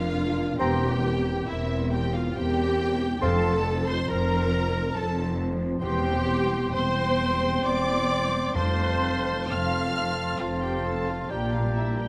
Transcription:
Already playing: F1 F2 F3 A#3 D4 F4 A#4 F5
0.02 D4
0.31 A#3
0.59 E1 E2 C4 G4 A#4 G5 A#5 C6
0.89 E3
1.19 A#3
1.47 E1 E2 C4 E4 A#4 E5
1.78 C5
1.91 G4 G5
2.07 A#4
2.13 F4 F5
2.35 E1 E2 C4 G4 A#4 C5 G5
2.65 C4
2.94 A#3
3.21 F1 F2 C4 A4 C5 F5 A5 C6
3.52 C3
3.81 F3
3.87 C5 C6
4.08 F1 F2 C4 A#4 A#5
4.38 C5
4.66 F4
4.95 F1 F2 C4 A4 C5 A5
5.24 C4
5.52 F3
5.81 E1 E2 C4 G4 C5 G5 C6
6.12 E3
6.43 G3
6.74 E1 E2 C4 C5 G5 C6
7.05 C5
7.34 G4
7.64 E1 E2 C5 D5 D6
7.96 C4
8.26 G3
8.55 F1 F2 C4 A4 C5 F5 A5 C6
8.87 C3
9.19 A3
9.49 F1 F2 C4 F5 A5 C6 F6
9.81 C5
10.11 A4
10.40 F1 F2 C4 F4 C5 F5 A5 C6
10.62 G4 G5
10.71 C4
10.84 A4 A5
11.01 A3
11.07 F4 F5
11.29 A#1 A#2 D4 G4 D5 G5 A#5
11.52 F4 F5
11.61 G3
11.74 E4 E5
11.91 D4 A#4
11.98 G4 G5

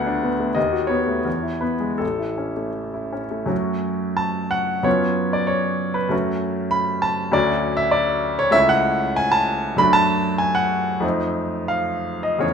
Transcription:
Already playing: D2 A3 B3 D4 F#5 G#5
0.06 D4
0.23 B3
0.40 A3
0.55 D#2 D#5
0.72 F#4
0.87 B3 C#5
1.06 A3
1.25 E2
1.43 E4
1.61 B3 B4
1.80 G#3
1.98 A1 A4
2.19 E4
2.38 C#4
2.56 A3
2.94 E4
3.12 C#4
3.31 A3
3.46 F#2 A3 C#4 F#4
4.17 A5
4.51 F#5
4.83 F#2 B3 C#4 F4 C#5
5.33 D5
5.47 C#5
5.94 B4
6.09 F#2 A3 C#4 F#4
6.71 B5
7.02 A5
7.31 D2 A3 C#4 F#4 D5
7.77 E5
7.91 D5
8.39 C#5
8.51 C#2 A3 C#4 E4 E5
8.69 F#5
9.16 G#5
9.32 A5
9.76 F#2 A3 D4 F#4 B5
9.93 A5
10.38 G#5
10.55 F#5
11.00 F2 A3 C4 D#4
11.68 F5
12.23 D#5
12.39 E2 A3 C#4 E4 C#5

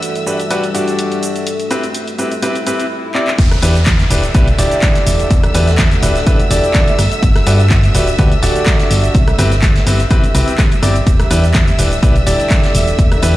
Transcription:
Already playing: G3 E4 A4 D5 E5 F#5 E6
0.03 closed hi-hat, shaker
0.16 closed hi-hat, shaker
0.26 D4 F#4 G4 B4, shaker
0.40 closed hi-hat, shaker
0.50 D4 F#4 G4 B4, closed hi-hat, shaker
0.64 closed hi-hat, shaker
0.75 D4 F#4 G4 D5, closed hi-hat, shaker
0.88 closed hi-hat, shaker
0.99 closed hi-hat, shaker
1.12 closed hi-hat, shaker
1.23 closed hi-hat, shaker
1.36 closed hi-hat, shaker
1.47 G4, closed hi-hat, shaker
1.60 closed hi-hat, shaker
1.71 C4 E4 G4 B4, closed hi-hat, shaker
1.84 closed hi-hat, shaker
1.95 closed hi-hat, shaker
2.07 closed hi-hat, shaker
2.19 C4 E4 G4 B4, closed hi-hat, shaker
2.32 closed hi-hat, shaker
2.42 C4 E4 G4 B4, closed hi-hat, swell, shaker
2.55 closed hi-hat, shaker
2.67 C4 E4 G4 B4, closed hi-hat, shaker
2.80 closed hi-hat, shaker
3.15 C4 E4 G4 D5, clap
3.27 clap
3.38 E1 A4 E5 E6, kick, closed hi-hat, downlifter, shaker
3.51 cross-stick, snare, closed hi-hat, shaker
3.62 E2 D4 E4 G4 B4, closed hi-hat, open hi-hat, shaker
3.75 snare, closed hi-hat, shaker
3.86 D5, kick, snare, clap, closed hi-hat, shaker
3.99 F#5, snare, closed hi-hat, shaker
4.10 D1 D4 E4 G4 B4, open hi-hat, shaker
4.23 closed hi-hat, shaker
4.34 B1 D4 E4 G4 B4, kick, closed hi-hat, shaker
4.48 closed hi-hat, shaker
4.58 D1 D4 E4 G4 D5, snare, closed hi-hat, open hi-hat, shaker
4.71 closed hi-hat, shaker
4.82 kick, cross-stick, snare, clap, closed hi-hat, shaker
4.95 snare, closed hi-hat, shaker
5.07 E1, closed hi-hat, open hi-hat, shaker
5.20 closed hi-hat, shaker
5.30 E1, kick, closed hi-hat, shaker
5.44 cross-stick, closed hi-hat, shaker
5.54 E2 D4 E4 G4 B4, closed hi-hat, open hi-hat, shaker
5.68 snare, closed hi-hat, shaker
5.78 kick, snare, clap, closed hi-hat, shaker
5.91 snare, closed hi-hat, shaker
6.02 D1 D4 E4 G4 B4, snare, closed hi-hat, open hi-hat, shaker
6.16 snare, closed hi-hat, shaker
6.26 D4 E4 G4 B4, kick, closed hi-hat, shaker
6.40 closed hi-hat, shaker
6.51 E1 D4 E4 G4 D5, closed hi-hat, open hi-hat, shaker
6.64 closed hi-hat, shaker
6.74 kick, cross-stick, snare, clap, closed hi-hat, shaker
6.88 closed hi-hat, shaker
6.99 G1, cross-stick, closed hi-hat, open hi-hat, shaker
7.12 closed hi-hat, shaker
7.22 G1, kick, closed hi-hat, shaker
7.36 cross-stick, snare, closed hi-hat, shaker
7.46 G2 D4 F#4 G4 B4, closed hi-hat, open hi-hat, shaker
7.59 snare, closed hi-hat, shaker
7.70 kick, snare, clap, closed hi-hat, shaker
7.84 snare, closed hi-hat, shaker
7.95 D1 D4 F#4 G4 B4, snare, open hi-hat, shaker
8.08 closed hi-hat, shaker
8.18 D2 D4 F#4 G4 B4, kick, closed hi-hat, shaker
8.32 closed hi-hat, shaker
8.43 D1 D4 F#4 G4 D5, snare, closed hi-hat, open hi-hat, shaker
8.56 closed hi-hat, shaker
8.66 kick, cross-stick, snare, clap, closed hi-hat, shaker
8.79 snare, closed hi-hat, shaker
8.91 G1, closed hi-hat, open hi-hat, shaker
9.04 closed hi-hat, shaker
9.14 C2 G4, kick, closed hi-hat, shaker
9.28 cross-stick, closed hi-hat, shaker
9.39 G1 C4 E4 G4 B4, closed hi-hat, open hi-hat, shaker
9.51 snare, closed hi-hat, shaker
9.62 kick, snare, clap, closed hi-hat, shaker
9.76 snare, closed hi-hat, shaker
9.84 G1 C4 E4 G4 B4 E5, closed hi-hat, open hi-hat, shaker
9.99 snare, closed hi-hat, shaker
10.10 C4 E4 G4 B4, kick, closed hi-hat, shaker
10.24 closed hi-hat, shaker
10.34 C2 C4 E4 G4 B4, closed hi-hat, open hi-hat, shaker
10.48 closed hi-hat, shaker
10.58 kick, cross-stick, snare, clap, closed hi-hat, shaker
10.71 closed hi-hat, shaker
10.83 G1 C4 E4 G4 D5, cross-stick, closed hi-hat, open hi-hat, shaker
10.96 closed hi-hat, shaker
11.06 E1 A4 E5 E6, kick, closed hi-hat, shaker
11.18 D5, cross-stick, snare, closed hi-hat, shaker
11.30 E2 D4 E4 G4 B4, closed hi-hat, open hi-hat, shaker
11.43 snare, closed hi-hat, shaker
11.54 kick, snare, clap, closed hi-hat, shaker
11.66 F#5, snare, closed hi-hat, shaker
11.78 D1 D4 E4 G4 B4, snare, open hi-hat, shaker
11.92 closed hi-hat, shaker
12.03 B1 D4 E4 G4 B4, kick, closed hi-hat, shaker
12.16 closed hi-hat, shaker
12.26 D1 D4 E4 G4 D5, snare, closed hi-hat, open hi-hat, shaker
12.40 closed hi-hat, shaker
12.50 kick, cross-stick, snare, clap, closed hi-hat, shaker
12.64 snare, closed hi-hat, shaker
12.75 E1, closed hi-hat, open hi-hat, shaker
12.88 closed hi-hat, shaker
12.98 E1, kick, closed hi-hat, shaker
13.12 cross-stick, closed hi-hat, shaker
13.22 E2 D4 E4 G4 B4, closed hi-hat, open hi-hat, shaker

